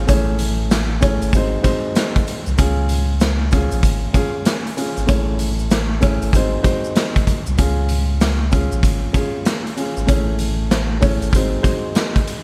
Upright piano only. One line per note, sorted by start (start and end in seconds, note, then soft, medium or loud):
0.07 0.96 A3 medium
0.07 0.96 C#4 medium
0.07 0.96 E4 medium
0.07 0.96 G#4 medium
0.07 0.97 C#5 loud
1.01 1.33 A3 medium
1.01 1.33 C#4 medium
1.01 1.33 E4 medium
1.01 1.33 G#4 medium
1.01 1.33 C#5 loud
1.34 1.60 G#3 medium
1.34 1.61 C4 medium
1.34 1.61 D#4 medium
1.34 1.62 F#4 medium
1.34 1.62 C5 loud
1.62 2.38 G#3 medium
1.62 2.38 C4 medium
1.62 2.38 D#4 medium
1.62 2.38 F#4 medium
1.62 2.38 C5 loud
2.58 3.46 C#4 loud
2.58 3.47 F4 medium
2.58 3.47 G#4 loud
3.52 4.11 C#4 loud
3.52 4.11 F4 medium
3.52 4.12 G#4 loud
4.13 4.73 C#4 medium
4.13 4.73 F4 medium
4.13 4.74 G#4 loud
4.77 5.06 C#4 medium
4.77 5.07 F4 medium
4.77 5.06 G#4 medium
5.07 5.96 A3 loud
5.07 5.96 C#4 medium
5.07 5.96 E4 medium
5.07 5.96 G#4 medium
5.07 5.97 C#5 loud
6.00 6.33 A3 medium
6.00 6.33 C#4 medium
6.00 6.33 E4 medium
6.00 6.33 G#4 medium
6.00 6.33 C#5 loud
6.34 6.60 G#3 medium
6.34 6.61 C4 medium
6.34 6.61 D#4 medium
6.34 6.61 F#4 medium
6.34 6.62 C5 loud
6.62 7.37 G#3 medium
6.62 7.38 C4 medium
6.62 7.38 D#4 medium
6.62 7.38 F#4 medium
6.62 7.38 C5 loud
7.58 8.46 C#4 medium
7.58 8.47 F4 medium
7.58 8.47 G#4 loud
8.51 9.11 C#4 loud
8.51 9.11 F4 medium
8.51 9.11 G#4 loud
9.13 9.73 C#4 medium
9.13 9.73 F4 medium
9.13 9.73 G#4 loud
9.76 10.05 C#4 medium
9.76 10.07 F4 medium
9.76 10.06 G#4 medium
10.06 10.96 A3 medium
10.06 10.96 C#4 medium
10.06 10.96 E4 medium
10.06 10.96 G#4 medium
10.06 10.96 C#5 loud
11.00 11.32 A3 medium
11.00 11.33 C#4 medium
11.00 11.33 E4 medium
11.00 11.33 G#4 medium
11.00 11.33 C#5 loud
11.34 11.60 G#3 medium
11.34 11.60 C4 medium
11.34 11.61 D#4 medium
11.34 11.61 F#4 medium
11.34 11.62 C5 loud
11.61 12.37 G#3 medium
11.61 12.38 C4 medium
11.61 12.38 D#4 medium
11.61 12.38 F#4 medium
11.61 12.38 C5 loud